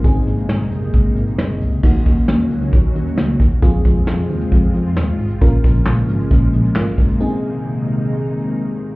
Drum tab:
CC |----------------|x---------------|----------------|----------------|
HH |x-xx--xxx-xx--xx|--xx--xxx-xx--xx|x-xx--oxx-xx--ox|x-xx--xxx-xx--ox|
CP |----------------|----------------|----------------|----x-------x---|
SD |----o-------o---|----o-------o---|----o-------o---|----o-------o---|
BD |o-------o-------|o-o-----o-----o-|o-o-----o-------|o-o-----o-----o-|

CC |----------------|
HH |----------------|
CP |----------------|
SD |----------------|
BD |----------------|